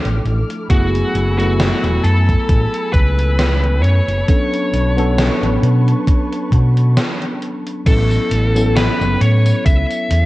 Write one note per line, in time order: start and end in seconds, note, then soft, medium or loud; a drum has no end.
0.00 0.64 F3 medium
0.00 0.65 A3 medium
0.00 4.24 A3 medium
0.00 0.65 D4 medium
0.00 0.65 E4 medium
0.00 0.66 A4 medium
0.00 0.66 D6 medium
0.00 0.68 F6 medium
0.05 0.17 A1 medium
0.05 closed hi-hat soft
0.25 0.40 A1 medium
0.25 closed hi-hat soft
0.50 closed hi-hat soft
0.69 0.99 F#1 medium
0.69 1.33 F#3 medium
0.69 1.33 A3 medium
0.69 1.33 B3 medium
0.69 1.34 E4 medium
0.69 1.37 F#4 medium
0.69 1.34 G#4 medium
0.69 4.24 G#5 medium
0.69 4.25 B5 medium
0.69 4.25 E6 medium
0.69 kick loud
0.69 closed hi-hat medium
0.95 closed hi-hat soft
1.15 1.69 F#1 loud
1.15 closed hi-hat medium
1.38 4.23 F#3 medium
1.38 4.23 A3 medium
1.38 4.24 B3 medium
1.38 4.24 E4 medium
1.38 2.06 F#4 medium
1.38 4.24 A4 medium
1.38 closed hi-hat soft
1.60 snare loud
1.60 closed hi-hat medium
1.84 1.96 E1 medium
1.84 closed hi-hat soft
2.04 2.33 F#2 loud
2.04 2.93 A4 medium
2.04 closed hi-hat medium
2.29 kick medium
2.29 closed hi-hat soft
2.49 2.64 A1 medium
2.49 kick loud
2.49 closed hi-hat medium
2.74 closed hi-hat soft
2.93 3.83 C#2 medium
2.93 3.86 B4 loud
2.93 kick loud
2.93 closed hi-hat medium
3.19 closed hi-hat soft
3.39 snare loud
3.39 closed hi-hat medium
3.64 closed hi-hat soft
3.82 3.98 F#2 loud
3.82 7.37 C#5 loud
3.82 closed hi-hat soft
4.08 4.20 F#1 medium
4.08 closed hi-hat soft
4.28 4.91 F#3 medium
4.28 4.91 B3 medium
4.28 4.92 C#4 medium
4.28 4.92 D4 medium
4.28 4.92 A4 medium
4.28 7.83 B4 medium
4.28 7.83 A5 medium
4.28 7.83 C#6 medium
4.28 kick loud
4.28 closed hi-hat medium
4.54 closed hi-hat soft
4.73 5.27 B1 medium
4.73 closed hi-hat medium
4.96 7.81 F#3 medium
4.96 7.81 B3 medium
4.96 7.82 C#4 medium
4.96 7.82 D4 medium
4.96 7.82 A4 loud
4.96 closed hi-hat soft
5.18 snare loud
5.18 closed hi-hat medium
5.42 5.55 A1 medium
5.42 closed hi-hat soft
5.62 5.91 B2 loud
5.62 closed hi-hat medium
5.88 closed hi-hat soft
6.07 kick loud
6.07 closed hi-hat medium
6.33 closed hi-hat soft
6.52 6.97 B2 medium
6.52 kick medium
6.52 closed hi-hat medium
6.77 closed hi-hat soft
6.97 snare loud
6.97 closed hi-hat medium
7.22 closed hi-hat soft
7.42 closed hi-hat soft
7.67 closed hi-hat soft
7.86 8.16 A1 loud
7.86 8.50 F#3 medium
7.86 8.50 B3 medium
7.86 8.50 C#4 medium
7.86 8.50 E4 medium
7.86 8.76 A4 medium
7.86 8.51 A4 medium
7.86 kick loud
7.86 closed hi-hat medium
7.86 crash loud
7.86 tambourine soft
8.11 tambourine soft
8.31 8.85 A1 loud
8.31 closed hi-hat medium
8.55 10.26 F#3 medium
8.55 10.26 B3 medium
8.55 10.26 C#4 medium
8.55 10.26 E4 medium
8.55 10.26 A4 medium
8.55 closed hi-hat medium
8.55 tambourine medium
8.76 9.22 B4 loud
8.76 snare loud
8.76 closed hi-hat medium
8.76 tambourine soft
9.01 9.13 F#1 medium
9.01 tambourine soft
9.21 9.50 A2 loud
9.21 9.62 C#5 loud
9.21 closed hi-hat medium
9.46 closed hi-hat medium
9.46 tambourine medium
9.66 9.81 C#2 medium
9.66 10.26 E5 loud
9.66 kick loud
9.66 closed hi-hat medium
9.66 tambourine soft
9.90 closed hi-hat soft
9.90 tambourine soft
10.10 10.26 E2 medium
10.10 closed hi-hat medium